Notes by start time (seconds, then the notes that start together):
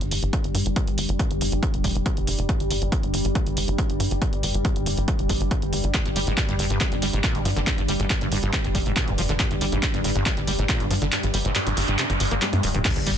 Already playing: G2 G3
0.01 G1, closed hi-hat
0.11 G1, open hi-hat
0.23 G1, closed hi-hat
0.33 kick, closed hi-hat
0.44 G1, closed hi-hat
0.55 G2, open hi-hat
0.66 G1, closed hi-hat
0.76 kick, closed hi-hat
0.87 G#1, closed hi-hat
0.98 G1, open hi-hat
1.09 G1, closed hi-hat
1.19 kick, closed hi-hat
1.31 G1, closed hi-hat
1.41 G1, open hi-hat
1.52 G1, closed hi-hat
1.63 kick, closed hi-hat
1.74 F1, closed hi-hat
1.84 F1, kick, open hi-hat
1.95 F1, closed hi-hat
2.06 kick, closed hi-hat
2.17 F1, closed hi-hat
2.27 F1, open hi-hat
2.39 F1, closed hi-hat
2.49 kick, closed hi-hat
2.60 G1, closed hi-hat
2.71 G1, open hi-hat
2.82 G1, closed hi-hat
2.92 kick, closed hi-hat
3.03 G1, closed hi-hat
3.14 G1, open hi-hat
3.25 G1, closed hi-hat
3.35 kick, closed hi-hat
3.46 G1, closed hi-hat
3.57 G1, open hi-hat
3.68 G1, closed hi-hat
3.78 kick, closed hi-hat
3.90 G1, closed hi-hat
4.00 G2, open hi-hat
4.11 G1, closed hi-hat
4.22 kick, closed hi-hat
4.33 G#1, closed hi-hat
4.43 G1, open hi-hat
4.54 G1, closed hi-hat
4.65 kick, closed hi-hat
4.76 G1, closed hi-hat
4.86 G1, open hi-hat
4.97 G1, closed hi-hat
5.08 kick, closed hi-hat
5.19 F1, closed hi-hat
5.29 G1, kick, open hi-hat
5.41 G1, closed hi-hat
5.51 kick, closed hi-hat
5.62 G1, closed hi-hat
5.73 G1, open hi-hat
5.84 G1, closed hi-hat
5.94 G2, kick, clap, closed hi-hat
6.05 G1 G2, closed hi-hat
6.16 G1 G3, open hi-hat
6.27 G1 G#2, closed hi-hat
6.37 G2, kick, clap, closed hi-hat
6.49 G1 G2, closed hi-hat
6.59 G1 G2, open hi-hat
6.70 G1 G2, closed hi-hat
6.81 C3, kick, clap, closed hi-hat
6.92 G1 G2, closed hi-hat
7.02 G1 G3, open hi-hat
7.13 G1 G#2, closed hi-hat
7.24 A#2, kick, clap, closed hi-hat
7.35 G1 G2, closed hi-hat
7.45 G2 F3, open hi-hat
7.57 G1 D3, closed hi-hat
7.67 G2, kick, clap, closed hi-hat
7.78 G#1 G2, closed hi-hat
7.88 G1 G3, open hi-hat
8.00 G1 G#2, closed hi-hat
8.10 G2, kick, clap, closed hi-hat
8.21 G1 G2, closed hi-hat
8.32 G1 G2, open hi-hat
8.43 G1 G2, closed hi-hat
8.53 C3, kick, clap, closed hi-hat
8.64 F1 G2, closed hi-hat
8.75 F1 G3, kick, open hi-hat
8.86 F1 G#2, closed hi-hat
8.96 A#2, kick, clap, closed hi-hat
9.08 F1 G2, closed hi-hat
9.18 F1 F3, open hi-hat
9.29 F1 D3, closed hi-hat
9.40 G2, kick, clap, closed hi-hat
9.51 G1 G2, closed hi-hat
9.61 G1 G3, open hi-hat
9.72 G1 G#2, closed hi-hat
9.83 G2, kick, clap, closed hi-hat
9.94 G1 G2, closed hi-hat
10.04 G1 G2, open hi-hat
10.15 G1 G2, closed hi-hat
10.26 C3, kick, clap, closed hi-hat
10.37 G1 G2, closed hi-hat
10.47 G1 G3, open hi-hat
10.59 G1 G#2, closed hi-hat
10.69 A#2, kick, clap, closed hi-hat
10.80 G1 G2, closed hi-hat
10.91 G2 F3, open hi-hat
11.02 G1 D3, closed hi-hat
11.12 G2, clap, closed hi-hat, noise sweep
11.23 G#1 G2, closed hi-hat
11.34 G1 G3, open hi-hat
11.45 G1 G#2, closed hi-hat
11.55 G2, clap, closed hi-hat
11.67 G1 G2, closed hi-hat
11.77 G1 G2, open hi-hat
11.88 G1 G2, closed hi-hat
11.98 C3, clap, closed hi-hat
12.10 G1 G2, closed hi-hat
12.20 G1 G2, open hi-hat
12.31 G1 A#3, closed hi-hat
12.42 G3, clap, closed hi-hat, high tom
12.53 G2, closed hi-hat, high tom
12.63 D1 G2, open hi-hat
12.75 D1 G2, closed hi-hat, mid tom
12.85 G2 G3, kick, clap, closed hi-hat, crash, impact
12.96 G1 G2, closed hi-hat
13.06 G1 G3, open hi-hat